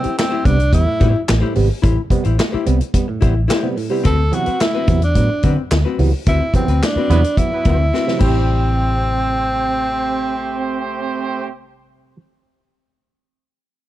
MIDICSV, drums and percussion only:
0, 0, Header, 1, 2, 480
1, 0, Start_track
1, 0, Tempo, 554017
1, 1593, Time_signature, 4, 2, 24, 8
1, 12032, End_track
2, 0, Start_track
2, 0, Title_t, "Drums"
2, 32, Note_on_c, 9, 42, 48
2, 119, Note_off_c, 9, 42, 0
2, 159, Note_on_c, 9, 42, 86
2, 166, Note_on_c, 9, 38, 105
2, 166, Note_on_c, 9, 39, 93
2, 246, Note_off_c, 9, 42, 0
2, 253, Note_off_c, 9, 38, 0
2, 253, Note_off_c, 9, 39, 0
2, 393, Note_on_c, 9, 36, 101
2, 397, Note_on_c, 9, 42, 81
2, 480, Note_off_c, 9, 36, 0
2, 484, Note_off_c, 9, 42, 0
2, 517, Note_on_c, 9, 42, 56
2, 603, Note_off_c, 9, 42, 0
2, 630, Note_on_c, 9, 36, 80
2, 632, Note_on_c, 9, 42, 93
2, 716, Note_off_c, 9, 36, 0
2, 718, Note_off_c, 9, 42, 0
2, 871, Note_on_c, 9, 42, 74
2, 875, Note_on_c, 9, 36, 95
2, 958, Note_off_c, 9, 42, 0
2, 961, Note_off_c, 9, 36, 0
2, 1108, Note_on_c, 9, 42, 76
2, 1117, Note_on_c, 9, 38, 118
2, 1117, Note_on_c, 9, 39, 98
2, 1195, Note_off_c, 9, 42, 0
2, 1204, Note_off_c, 9, 38, 0
2, 1204, Note_off_c, 9, 39, 0
2, 1347, Note_on_c, 9, 46, 77
2, 1434, Note_off_c, 9, 46, 0
2, 1589, Note_on_c, 9, 42, 86
2, 1591, Note_on_c, 9, 36, 113
2, 1676, Note_off_c, 9, 42, 0
2, 1677, Note_off_c, 9, 36, 0
2, 1823, Note_on_c, 9, 36, 89
2, 1831, Note_on_c, 9, 42, 67
2, 1910, Note_off_c, 9, 36, 0
2, 1918, Note_off_c, 9, 42, 0
2, 1946, Note_on_c, 9, 42, 46
2, 2032, Note_off_c, 9, 42, 0
2, 2070, Note_on_c, 9, 42, 79
2, 2077, Note_on_c, 9, 38, 107
2, 2077, Note_on_c, 9, 39, 89
2, 2156, Note_off_c, 9, 42, 0
2, 2163, Note_off_c, 9, 38, 0
2, 2163, Note_off_c, 9, 39, 0
2, 2308, Note_on_c, 9, 42, 79
2, 2395, Note_off_c, 9, 42, 0
2, 2432, Note_on_c, 9, 42, 52
2, 2519, Note_off_c, 9, 42, 0
2, 2546, Note_on_c, 9, 42, 105
2, 2547, Note_on_c, 9, 36, 81
2, 2632, Note_off_c, 9, 42, 0
2, 2633, Note_off_c, 9, 36, 0
2, 2789, Note_on_c, 9, 42, 75
2, 2793, Note_on_c, 9, 36, 95
2, 2875, Note_off_c, 9, 42, 0
2, 2879, Note_off_c, 9, 36, 0
2, 3029, Note_on_c, 9, 42, 75
2, 3039, Note_on_c, 9, 38, 109
2, 3039, Note_on_c, 9, 39, 94
2, 3116, Note_off_c, 9, 42, 0
2, 3125, Note_off_c, 9, 38, 0
2, 3125, Note_off_c, 9, 39, 0
2, 3269, Note_on_c, 9, 46, 73
2, 3356, Note_off_c, 9, 46, 0
2, 3506, Note_on_c, 9, 42, 96
2, 3511, Note_on_c, 9, 36, 108
2, 3593, Note_off_c, 9, 42, 0
2, 3597, Note_off_c, 9, 36, 0
2, 3749, Note_on_c, 9, 42, 69
2, 3836, Note_off_c, 9, 42, 0
2, 3864, Note_on_c, 9, 42, 51
2, 3951, Note_off_c, 9, 42, 0
2, 3987, Note_on_c, 9, 42, 78
2, 3994, Note_on_c, 9, 38, 113
2, 3994, Note_on_c, 9, 39, 85
2, 4073, Note_off_c, 9, 42, 0
2, 4080, Note_off_c, 9, 38, 0
2, 4080, Note_off_c, 9, 39, 0
2, 4224, Note_on_c, 9, 42, 90
2, 4228, Note_on_c, 9, 36, 101
2, 4311, Note_off_c, 9, 42, 0
2, 4315, Note_off_c, 9, 36, 0
2, 4348, Note_on_c, 9, 42, 59
2, 4435, Note_off_c, 9, 42, 0
2, 4463, Note_on_c, 9, 42, 98
2, 4465, Note_on_c, 9, 36, 79
2, 4550, Note_off_c, 9, 42, 0
2, 4552, Note_off_c, 9, 36, 0
2, 4702, Note_on_c, 9, 42, 73
2, 4710, Note_on_c, 9, 36, 92
2, 4789, Note_off_c, 9, 42, 0
2, 4797, Note_off_c, 9, 36, 0
2, 4943, Note_on_c, 9, 42, 68
2, 4952, Note_on_c, 9, 38, 116
2, 4952, Note_on_c, 9, 39, 100
2, 5029, Note_off_c, 9, 42, 0
2, 5038, Note_off_c, 9, 38, 0
2, 5038, Note_off_c, 9, 39, 0
2, 5189, Note_on_c, 9, 46, 71
2, 5275, Note_off_c, 9, 46, 0
2, 5427, Note_on_c, 9, 42, 85
2, 5431, Note_on_c, 9, 36, 114
2, 5514, Note_off_c, 9, 42, 0
2, 5518, Note_off_c, 9, 36, 0
2, 5664, Note_on_c, 9, 36, 90
2, 5670, Note_on_c, 9, 42, 64
2, 5750, Note_off_c, 9, 36, 0
2, 5757, Note_off_c, 9, 42, 0
2, 5788, Note_on_c, 9, 42, 48
2, 5875, Note_off_c, 9, 42, 0
2, 5912, Note_on_c, 9, 42, 82
2, 5920, Note_on_c, 9, 38, 107
2, 5920, Note_on_c, 9, 39, 78
2, 5999, Note_off_c, 9, 42, 0
2, 6006, Note_off_c, 9, 38, 0
2, 6006, Note_off_c, 9, 39, 0
2, 6154, Note_on_c, 9, 42, 79
2, 6241, Note_off_c, 9, 42, 0
2, 6276, Note_on_c, 9, 42, 56
2, 6362, Note_off_c, 9, 42, 0
2, 6389, Note_on_c, 9, 36, 83
2, 6390, Note_on_c, 9, 42, 93
2, 6475, Note_off_c, 9, 36, 0
2, 6476, Note_off_c, 9, 42, 0
2, 6627, Note_on_c, 9, 42, 68
2, 6632, Note_on_c, 9, 36, 100
2, 6713, Note_off_c, 9, 42, 0
2, 6719, Note_off_c, 9, 36, 0
2, 6880, Note_on_c, 9, 38, 61
2, 6967, Note_off_c, 9, 38, 0
2, 7001, Note_on_c, 9, 38, 59
2, 7087, Note_off_c, 9, 38, 0
2, 7109, Note_on_c, 9, 49, 90
2, 7111, Note_on_c, 9, 36, 105
2, 7196, Note_off_c, 9, 49, 0
2, 7197, Note_off_c, 9, 36, 0
2, 12032, End_track
0, 0, End_of_file